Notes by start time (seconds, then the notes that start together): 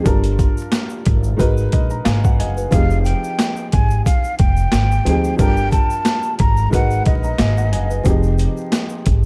0.04 G1 G3 D4 F4 A4 A#4, kick, closed hi-hat, shaker
0.24 closed hi-hat, shaker
0.39 kick, closed hi-hat, shaker
0.58 shaker
0.72 snare, closed hi-hat, shaker
0.90 shaker
1.05 G#1, kick, closed hi-hat
1.24 shaker
1.37 G#1 G#3 D#4 F#4 A#4 B4, kick, closed hi-hat, shaker
1.57 shaker
1.72 A#1 D#5, kick, closed hi-hat
1.90 A#5, shaker
2.05 G#1 F5 G#5, snare, closed hi-hat, shaker
2.24 F#5, kick, shaker
2.39 F#1 D#5 G#5, closed hi-hat
2.57 B4, shaker
2.71 F1 F3 C4 D#4 G4 G#4 F5, kick, closed hi-hat, shaker
2.90 shaker
3.04 G5, closed hi-hat, shaker
3.24 shaker
3.39 snare, closed hi-hat, shaker
3.56 shaker
3.72 G#1 G#5, kick, closed hi-hat
3.90 shaker
4.05 F5, kick, closed hi-hat, shaker
4.24 shaker
4.39 F1 G5, kick, closed hi-hat
4.57 shaker
4.72 G#1, snare, closed hi-hat, shaker
4.91 shaker
5.05 D2 F3 C4 D#4 G4 G#4, closed hi-hat
5.24 shaker
5.37 G1 G3 D4 F4 A4 A#4 G5, kick, closed hi-hat, shaker
5.57 shaker
5.72 A5, kick, closed hi-hat, shaker
5.90 shaker
6.05 snare, closed hi-hat, shaker
6.23 shaker
6.39 G#1 A#5, kick, closed hi-hat
6.57 shaker
6.70 G#1 G#3 D#4 F#4 A#4 B4 F#5, kick, closed hi-hat, shaker
6.91 shaker
7.05 A#1 D#5, kick, closed hi-hat
7.24 A#5, shaker
7.38 G#1 F5 G#5, snare, closed hi-hat, shaker
7.58 F#5, shaker
7.72 F#1 D#5 G#5, closed hi-hat
7.90 B4, shaker
8.04 F1 F3 C4 D#4 G4 G#4, kick, closed hi-hat, shaker
8.23 shaker
8.38 closed hi-hat, shaker
8.57 shaker
8.72 snare, closed hi-hat, shaker
8.89 shaker
9.06 G#1, kick, closed hi-hat